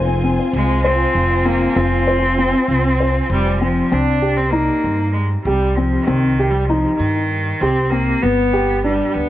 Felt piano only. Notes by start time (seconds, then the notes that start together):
Already playing: C5
0.24 C4
0.84 C5
1.45 C4
1.76 C4
2.07 C5
2.38 C4
3.00 C5
3.61 C4
3.92 C4
4.22 G4
4.53 D#4
5.47 G4
5.77 C4
6.07 C4
6.39 G4
6.70 D#4
7.62 G4
7.92 C4
8.22 B3
8.53 G4
8.84 D4